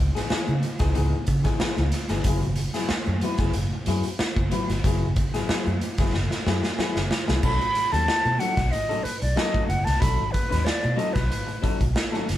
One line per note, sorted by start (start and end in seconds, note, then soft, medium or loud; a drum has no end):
0.00 muted clean electric guitar stroke soft
0.15 0.29 E3 soft
0.15 0.30 B3 medium
0.15 0.30 D#4 medium
0.15 0.30 G#4 medium
0.15 snare soft
0.15 closed hi-hat medium
0.30 0.51 E3 medium
0.30 0.51 B3 medium
0.30 0.52 D#4 medium
0.30 0.52 G#4 loud
0.30 muted fingered electric bass stroke soft
0.30 snare loud
0.47 0.61 C#3 medium
0.47 closed hi-hat soft
0.63 muted clean electric guitar stroke medium
0.63 closed hi-hat medium
0.79 0.93 C#2 loud
0.79 0.93 E3 soft
0.79 0.94 B3 medium
0.79 0.94 D#4 medium
0.79 0.95 G#4 medium
0.79 kick medium
0.79 snare soft
0.79 closed hi-hat medium
0.94 1.11 C#2 loud
0.94 1.16 E3 medium
0.94 1.16 B3 loud
0.94 1.16 D#4 medium
0.94 1.16 G#4 loud
0.94 closed hi-hat medium
1.27 1.43 C#3 medium
1.27 muted clean electric guitar stroke soft
1.27 kick medium
1.27 closed hi-hat medium
1.44 1.59 E3 medium
1.44 1.60 B3 soft
1.44 1.60 D#4 medium
1.44 1.59 G#4 medium
1.44 kick medium
1.44 snare soft
1.44 closed hi-hat medium
1.60 1.81 E3 medium
1.60 1.81 B3 medium
1.60 1.81 D#4 medium
1.60 1.82 G#4 medium
1.60 muted fingered electric bass stroke soft
1.60 snare loud
1.77 1.91 C#2 medium
1.77 snare soft
1.77 closed hi-hat soft
1.92 muted clean electric guitar stroke soft
1.92 snare soft
1.92 closed hi-hat medium
2.08 2.23 G1 medium
2.08 2.25 E3 medium
2.08 2.25 B3 medium
2.08 2.25 D#4 medium
2.08 2.24 G#4 medium
2.08 snare soft
2.08 closed hi-hat medium
2.24 2.67 F#1 loud
2.24 2.46 F#3 medium
2.24 2.42 B3 medium
2.24 2.42 E4 medium
2.24 2.41 G#4 medium
2.24 kick loud
2.24 closed hi-hat loud
2.42 muted clean electric guitar stroke soft
2.42 closed hi-hat soft
2.56 muted clean electric guitar stroke soft
2.56 closed hi-hat medium
2.74 2.88 F#3 soft
2.74 2.89 B3 medium
2.74 2.89 E4 medium
2.74 2.89 G#4 medium
2.74 snare soft
2.74 closed hi-hat medium
2.89 muted clean electric guitar stroke soft
2.89 muted fingered electric bass stroke soft
2.89 snare loud
3.06 3.20 F#2 loud
3.06 muted clean electric guitar stroke medium
3.06 closed hi-hat soft
3.21 3.39 F#3 medium
3.21 3.39 B3 medium
3.21 3.39 E4 medium
3.21 3.39 B4 medium
3.21 closed hi-hat medium
3.38 3.52 F#1 loud
3.38 3.54 F#3 medium
3.38 3.55 B3 medium
3.38 3.55 E4 medium
3.38 3.54 G#4 medium
3.38 kick medium
3.38 snare soft
3.38 closed hi-hat soft
3.53 3.69 F#1 loud
3.53 muted clean electric guitar stroke soft
3.53 closed hi-hat medium
3.73 muted clean electric guitar stroke soft
3.86 4.02 F#2 loud
3.86 4.08 F#3 medium
3.86 4.05 B3 medium
3.86 4.05 E4 loud
3.86 4.04 G#4 loud
3.86 closed hi-hat medium
4.03 muted clean electric guitar stroke soft
4.03 closed hi-hat medium
4.19 muted fingered electric bass stroke medium
4.19 muted clean electric guitar stroke soft
4.19 snare loud
4.36 4.50 F#1 medium
4.36 muted clean electric guitar stroke soft
4.36 kick medium
4.36 closed hi-hat soft
4.51 4.72 F#3 medium
4.51 4.70 B3 medium
4.51 4.69 E4 medium
4.51 4.70 B4 loud
4.51 closed hi-hat medium
4.69 4.82 G1 medium
4.69 muted clean electric guitar stroke soft
4.69 snare soft
4.69 closed hi-hat medium
4.84 5.27 F#1 loud
4.84 5.05 F#3 medium
4.84 5.05 B3 medium
4.84 5.06 E4 medium
4.84 5.06 G#4 medium
4.84 kick medium
4.84 closed hi-hat loud
5.16 muted clean electric guitar stroke soft
5.16 kick medium
5.16 closed hi-hat medium
5.34 5.48 F#3 medium
5.34 5.49 B3 medium
5.34 5.49 E4 medium
5.34 5.49 G#4 medium
5.34 snare soft
5.34 closed hi-hat medium
5.49 5.70 F#3 medium
5.49 5.70 B3 medium
5.49 5.70 E4 medium
5.49 5.70 G#4 medium
5.49 muted fingered electric bass stroke soft
5.49 snare loud
5.66 5.80 F#2 medium
5.66 closed hi-hat soft
5.81 muted clean electric guitar stroke soft
5.81 closed hi-hat medium
5.98 6.12 F#1 medium
5.98 6.14 F#3 soft
5.98 6.14 B3 soft
5.98 6.14 E4 medium
5.98 6.13 G#4 medium
5.98 kick loud
5.98 snare soft
5.98 closed hi-hat medium
6.14 6.29 F#1 loud
6.14 snare medium
6.31 muted clean electric guitar stroke soft
6.31 snare medium
6.46 6.61 F#2 loud
6.46 6.67 F#3 medium
6.46 6.64 B3 medium
6.46 6.63 E4 loud
6.46 6.62 G#4 loud
6.46 snare medium
6.63 muted clean electric guitar stroke soft
6.63 snare medium
6.78 6.99 F#3 medium
6.78 6.99 B3 loud
6.78 7.00 E4 loud
6.78 7.00 G#4 loud
6.78 muted fingered electric bass stroke medium
6.78 snare medium
6.96 7.09 F#1 medium
6.96 snare medium
7.10 muted clean electric guitar stroke soft
7.10 snare loud
7.27 7.42 C2 medium
7.27 7.41 F#3 soft
7.27 7.43 B3 medium
7.27 7.43 E4 medium
7.27 7.42 G#4 medium
7.27 snare medium
7.43 7.58 B1 loud
7.43 7.64 F#3 medium
7.43 7.60 C#4 medium
7.43 7.59 D#4 medium
7.43 7.58 A4 loud
7.43 7.93 B5 loud
7.43 kick loud
7.43 crash loud
7.59 muted clean electric guitar stroke soft
7.59 closed hi-hat soft
7.75 muted clean electric guitar stroke soft
7.75 closed hi-hat medium
7.92 8.06 D#2 medium
7.92 8.06 F#3 medium
7.92 8.07 C#4 medium
7.92 8.07 D#4 medium
7.92 8.07 A4 medium
7.92 8.41 A5 loud
7.92 closed hi-hat medium
8.08 muted clean electric guitar stroke soft
8.08 muted fingered electric bass stroke soft
8.08 snare loud
8.25 8.38 B2 loud
8.25 muted clean electric guitar stroke soft
8.25 closed hi-hat soft
8.39 8.61 F#3 medium
8.39 8.57 C#4 medium
8.39 8.56 D#4 medium
8.39 8.55 A4 medium
8.39 8.73 F#5 loud
8.39 closed hi-hat medium
8.57 8.70 B1 medium
8.57 muted clean electric guitar stroke soft
8.57 kick medium
8.57 snare soft
8.57 closed hi-hat medium
8.71 9.05 D#5 medium
8.71 muted clean electric guitar stroke soft
8.71 closed hi-hat medium
8.89 9.03 F#3 medium
8.89 9.04 C#4 medium
8.89 9.04 D#4 medium
8.89 9.05 A4 medium
8.89 closed hi-hat soft
9.03 9.21 B4 medium
9.03 muted clean electric guitar stroke soft
9.03 muted fingered electric bass stroke soft
9.03 closed hi-hat medium
9.21 9.35 B1 medium
9.21 9.37 D5 medium
9.21 muted clean electric guitar stroke soft
9.21 closed hi-hat medium
9.36 9.67 F#3 medium
9.36 9.67 C#4 medium
9.36 9.67 D#4 medium
9.36 9.67 A4 medium
9.36 9.67 D#5 medium
9.36 snare loud
9.54 kick medium
9.54 closed hi-hat soft
9.68 9.84 F#1 medium
9.68 9.86 F#5 medium
9.68 muted clean electric guitar stroke soft
9.68 closed hi-hat medium
9.84 10.00 C2 medium
9.84 10.02 A5 loud
9.84 muted clean electric guitar stroke soft
9.84 snare soft
9.84 closed hi-hat medium
10.00 10.17 B1 loud
10.00 10.22 F#3 medium
10.00 10.22 C#4 medium
10.00 10.22 D#4 medium
10.00 10.23 A4 medium
10.00 10.33 B5 medium
10.00 kick loud
10.00 closed hi-hat loud
10.32 10.66 B4 medium
10.32 muted clean electric guitar stroke soft
10.32 kick medium
10.32 closed hi-hat medium
10.50 10.65 D#2 medium
10.50 10.66 F#3 medium
10.50 10.66 C#4 medium
10.50 10.66 D#4 medium
10.50 10.65 B4 medium
10.50 snare soft
10.50 closed hi-hat medium
10.65 10.98 D5 medium
10.65 muted fingered electric bass stroke soft
10.65 snare loud
10.82 10.97 B2 medium
10.82 muted clean electric guitar stroke soft
10.82 closed hi-hat soft
10.96 11.18 F#3 medium
10.96 11.15 C#4 loud
10.96 11.14 D#4 medium
10.96 11.13 A4 medium
10.96 11.15 D#5 medium
10.96 closed hi-hat medium
11.13 11.29 B1 medium
11.13 11.79 B4 medium
11.13 muted clean electric guitar stroke soft
11.13 kick medium
11.13 snare soft
11.13 closed hi-hat medium
11.32 closed hi-hat medium
11.47 muted clean electric guitar stroke soft
11.47 closed hi-hat soft
11.62 11.84 F#3 medium
11.62 11.80 C#4 medium
11.62 11.80 D#4 medium
11.62 11.79 A4 medium
11.62 muted fingered electric bass stroke soft
11.62 kick medium
11.62 closed hi-hat medium
11.80 11.94 B1 medium
11.80 muted clean electric guitar stroke soft
11.80 kick medium
11.80 closed hi-hat medium
11.95 muted clean electric guitar stroke soft
11.95 snare loud
12.12 12.27 F#3 medium
12.12 12.28 C#4 medium
12.12 12.28 D#4 medium
12.12 12.28 A4 medium
12.12 snare soft
12.12 closed hi-hat soft
12.29 12.38 F#1 medium
12.29 muted clean electric guitar stroke soft
12.29 snare soft
12.29 closed hi-hat medium